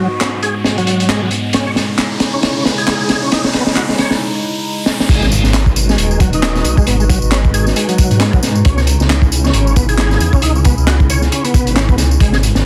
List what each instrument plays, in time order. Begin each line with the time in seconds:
Already playing: ambient pad G#2 G#3 B3 F#4, riser
0.21 tonewheel organ C#4, snare, clap, closed hi-hat
0.43 tonewheel organ G#4, closed hi-hat
0.64 tonewheel organ G#3, snare, closed hi-hat
0.78 tonewheel organ F#3, closed hi-hat
0.87 closed hi-hat
1.00 closed hi-hat
1.09 tonewheel organ G#3, snare, clap, closed hi-hat
1.22 tonewheel organ F#3
1.31 closed hi-hat
1.53 ambient pad C#3 G#3 D#4 E4, tonewheel organ C#4, snare, closed hi-hat
1.67 tonewheel organ C#5
1.76 snare, closed hi-hat
1.98 snare, clap, closed hi-hat
2.20 snare, closed hi-hat
2.34 tonewheel organ C#4
2.43 snare, closed hi-hat
2.65 tonewheel organ B3, snare, closed hi-hat
2.78 tonewheel organ G#4, closed hi-hat
2.87 snare, clap, closed hi-hat
3.09 snare, closed hi-hat
3.23 tonewheel organ C#4
3.32 tonewheel organ D#4, snare, closed hi-hat
3.44 tonewheel organ C#4, snare
3.53 tonewheel organ B3, snare, closed hi-hat
3.67 snare
3.75 tonewheel organ F#4, snare, clap, closed hi-hat
3.89 snare
3.98 tonewheel organ C#5, snare, closed hi-hat
4.11 snare
4.86 snare
5.00 snare
5.09 detuned saw bass G#1, tonewheel organ G#3, ambient pad G#3 D#4 F#4 B4, kick, closed hi-hat, crash, tambourine, impact
5.22 tonewheel organ G#4, snare, tambourine
5.32 closed hi-hat, tambourine
5.44 detuned saw bass G#1, snare, tambourine
5.54 snare, clap, closed hi-hat, tambourine
5.66 kick, tambourine
5.76 closed hi-hat, tambourine
5.89 tonewheel organ G#3, snare, tambourine
5.98 detuned saw bass D#1, closed hi-hat, tambourine
6.11 tambourine
6.20 tonewheel organ F#3, kick, closed hi-hat, tambourine
6.33 tonewheel organ D#4, closed hi-hat, tambourine
6.42 snare, clap, closed hi-hat, tambourine
6.56 snare, tambourine
6.65 detuned saw bass B1, closed hi-hat, tambourine
6.77 tonewheel organ G#3, kick, tambourine
6.87 detuned saw bass G#1, tonewheel organ B3, closed hi-hat, tambourine
7.00 tonewheel organ G#3, tambourine
7.09 tonewheel organ F#3, kick, closed hi-hat, tambourine
7.22 detuned saw bass G#1, tambourine
7.31 tonewheel organ C#4, snare, clap, closed hi-hat, tambourine
7.44 kick, tambourine
7.54 tonewheel organ G#4, closed hi-hat, tambourine
7.67 snare, tambourine
7.76 tonewheel organ G#3, closed hi-hat, tambourine
7.89 tonewheel organ F#3, closed hi-hat, tambourine
7.98 kick, closed hi-hat, tambourine
8.11 detuned saw bass G#2, closed hi-hat, tambourine
8.20 tonewheel organ G#3, snare, clap, closed hi-hat, tambourine
8.33 tonewheel organ F#3, kick, tambourine
8.43 snare, closed hi-hat, tambourine
8.55 tambourine
8.65 detuned saw bass C#2, ambient pad C#3 C#4 E4, tonewheel organ C#4, kick, closed hi-hat, tambourine
8.77 tonewheel organ C#5, snare, tambourine
8.87 closed hi-hat, tambourine
9.00 detuned saw bass C#2, snare, tambourine
9.09 snare, clap, closed hi-hat, tambourine
9.22 kick, tambourine
9.32 closed hi-hat, tambourine
9.44 tonewheel organ C#4, snare, tambourine
9.53 detuned saw bass G#1, closed hi-hat, tambourine
9.67 tambourine
9.76 tonewheel organ B3, kick, closed hi-hat, tambourine
9.89 tonewheel organ G#4, closed hi-hat, tambourine
9.98 snare, clap, closed hi-hat, tambourine
10.11 snare, tambourine
10.20 detuned saw bass E2, closed hi-hat, tambourine
10.33 tonewheel organ C#4, kick, tambourine
10.42 detuned saw bass C#2, tonewheel organ D#4, closed hi-hat, tambourine
10.55 tonewheel organ C#4, tambourine
10.65 tonewheel organ B3, kick, closed hi-hat, tambourine
10.78 detuned saw bass C#2, tambourine
10.87 tonewheel organ F#4, snare, clap, closed hi-hat, tambourine
11.00 kick, tambourine
11.10 tonewheel organ C#5, closed hi-hat, tambourine
11.22 snare, tambourine
11.32 tonewheel organ C#4, closed hi-hat, tambourine
11.45 tonewheel organ B3, closed hi-hat, tambourine
11.54 kick, closed hi-hat, tambourine
11.66 detuned saw bass G#1, closed hi-hat, tambourine
11.76 tonewheel organ C#4, snare, clap, closed hi-hat, tambourine
11.89 tonewheel organ B3, kick, tambourine
11.98 detuned saw bass C#2, snare, closed hi-hat, tambourine
12.11 tambourine
12.20 detuned saw bass G#1, tonewheel organ G#3, ambient pad G#3 D#4 F#4 B4, kick, closed hi-hat, tambourine
12.33 tonewheel organ G#4, snare, tambourine
12.43 closed hi-hat, tambourine
12.55 detuned saw bass G#1, snare, tambourine